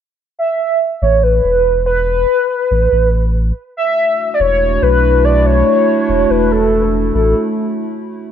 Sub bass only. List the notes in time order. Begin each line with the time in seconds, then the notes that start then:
1.02 A1
1.44 E1
2.71 A1
2.92 A1
4.40 E1
4.82 B1
6.09 E1
6.30 E1
7.15 A1